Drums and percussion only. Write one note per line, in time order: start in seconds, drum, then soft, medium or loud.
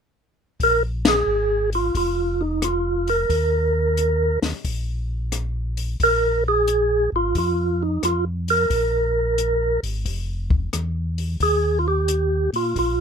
0.60 kick soft
0.60 open hi-hat soft
1.05 snare medium
1.05 ride medium
1.73 open hi-hat soft
1.95 kick soft
1.95 open hi-hat soft
2.62 cross-stick medium
2.62 closed hi-hat soft
3.08 open hi-hat soft
3.30 kick soft
3.30 open hi-hat soft
3.97 closed hi-hat soft
4.42 snare soft
4.42 open hi-hat soft
4.65 kick soft
4.65 open hi-hat soft
5.32 cross-stick medium
5.32 closed hi-hat medium
5.77 open hi-hat soft
6.00 kick soft
6.00 open hi-hat soft
6.68 closed hi-hat soft
7.35 kick soft
7.35 open hi-hat soft
8.03 cross-stick medium
8.03 closed hi-hat medium
8.48 open hi-hat soft
8.70 kick soft
8.70 open hi-hat soft
9.38 closed hi-hat soft
9.84 open hi-hat soft
10.05 kick soft
10.05 open hi-hat soft
10.50 kick medium
10.73 cross-stick medium
10.73 closed hi-hat soft
11.18 open hi-hat soft
11.40 kick soft
11.40 open hi-hat soft
12.08 closed hi-hat medium
12.54 open hi-hat soft
12.76 kick soft
12.76 open hi-hat soft